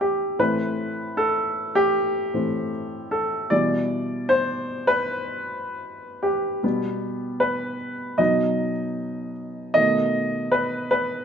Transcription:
0.00 0.35 E3 soft
0.00 0.36 G3 soft
0.00 0.36 B3 soft
0.00 0.41 G4 medium
0.00 0.42 A4 medium
0.39 2.32 A2 soft
0.39 2.33 E3 soft
0.39 2.33 C4 soft
0.39 1.20 B4 medium
1.17 1.78 A4 medium
1.75 3.16 G4 medium
2.34 2.69 A2 soft
2.34 2.69 E3 soft
2.34 2.70 C4 soft
3.11 3.20 A4 medium
3.50 6.59 B2 soft
3.50 6.59 E3 soft
3.50 6.59 G3 soft
3.50 4.25 D5 medium
4.29 4.84 C5 medium
4.87 6.28 B4 medium
6.23 7.44 G4 medium
6.63 7.76 B2 soft
6.63 7.76 G3 soft
6.63 7.76 B3 soft
7.40 8.21 B4 medium
8.18 8.70 B2 soft
8.18 8.71 F#3 soft
8.18 8.71 D#4 soft
8.18 9.31 D#5 medium
9.74 10.26 B2 soft
9.74 10.27 D#3 soft
9.74 10.27 A3 soft
9.74 10.48 D#5 medium
10.52 10.89 B4 medium
10.91 11.25 B4 medium

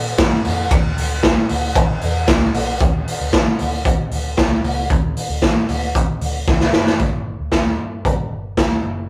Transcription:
0.00 0.15 A#2 medium
0.18 0.41 G2 medium
0.18 kick loud
0.18 snare loud
0.18 hi-hat pedal medium
0.18 ride medium
0.45 0.68 F2 medium
0.45 open hi-hat medium
0.71 0.93 D2 loud
0.71 kick loud
0.71 hi-hat pedal medium
0.71 ride medium
0.98 1.31 D2 medium
0.98 open hi-hat medium
1.23 kick loud
1.23 snare loud
1.23 hi-hat pedal medium
1.23 ride soft
1.49 1.72 D2 loud
1.49 open hi-hat medium
1.75 1.98 A1 medium
1.75 kick loud
1.75 hi-hat pedal medium
1.75 ride medium
2.01 2.24 E2 medium
2.01 open hi-hat medium
2.28 2.50 C#2 medium
2.28 kick loud
2.28 snare loud
2.28 hi-hat pedal medium
2.28 ride medium
2.54 2.77 B1 loud
2.54 open hi-hat medium
2.81 3.03 D2 loud
2.81 kick loud
2.81 closed hi-hat medium
3.08 open hi-hat medium
3.20 3.31 D2 medium
3.33 3.56 D3 loud
3.33 kick loud
3.33 snare loud
3.33 closed hi-hat medium
3.59 3.93 D2 medium
3.59 open hi-hat medium
3.85 kick loud
3.85 closed hi-hat medium
4.11 4.34 D2 loud
4.11 open hi-hat medium
4.37 4.60 C#2 medium
4.37 kick loud
4.37 snare loud
4.37 closed hi-hat medium
4.63 4.86 C#2 loud
4.63 open hi-hat medium
4.90 5.13 D2 loud
4.90 kick loud
4.90 closed hi-hat medium
5.17 open hi-hat medium
5.29 5.44 D2 loud
5.42 5.65 D3 medium
5.42 kick loud
5.42 snare loud
5.42 closed hi-hat medium
5.69 6.02 D2 loud
5.69 open hi-hat medium
5.95 kick loud
5.95 closed hi-hat medium
6.21 6.43 D2 medium
6.21 open hi-hat medium
6.47 6.70 C#2 medium
6.47 kick loud
6.47 snare medium
6.60 snare medium
6.73 6.95 F#1 medium
6.73 snare medium
6.86 snare medium
6.99 7.34 G1 loud
6.99 kick loud
6.99 closed hi-hat medium
7.39 7.50 D2 medium
7.52 kick medium
7.52 snare loud
7.52 closed hi-hat medium
7.78 8.01 G2 medium
8.05 8.27 G2 medium
8.05 kick loud
8.05 closed hi-hat medium
8.31 8.54 G1 medium
8.57 8.80 D2 medium
8.57 kick medium
8.57 snare loud
8.57 closed hi-hat medium
8.83 9.06 F#1 medium

